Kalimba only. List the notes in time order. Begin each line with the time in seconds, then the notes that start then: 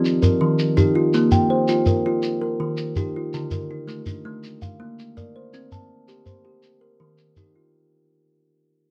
Already playing: F4
0.22 A#4
0.41 D#3
0.77 D#4 G4
0.95 F4
1.14 A#3
1.32 G5
1.50 C5
1.69 F4
1.87 A#4
2.06 F4
2.42 A#4
2.60 D#3
2.97 D#4 G4
3.16 F4
3.34 D3
3.52 A#4
3.70 D#4
3.87 A3
4.07 D4
4.25 A3
4.62 F5
4.80 A#3
5.17 A#4 D5
5.36 C5
5.54 C4
5.72 A5
6.08 G4
6.26 C5
6.45 G4
6.82 A#4
7.00 D#3
7.37 D#4 G4
7.55 F4